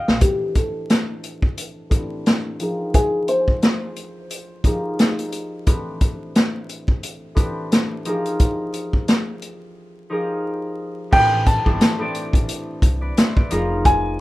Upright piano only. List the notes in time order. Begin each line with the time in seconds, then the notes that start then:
0.22 G4
0.56 A4
2.95 G#4
3.29 C5
11.13 G5
11.47 A5
13.85 G#5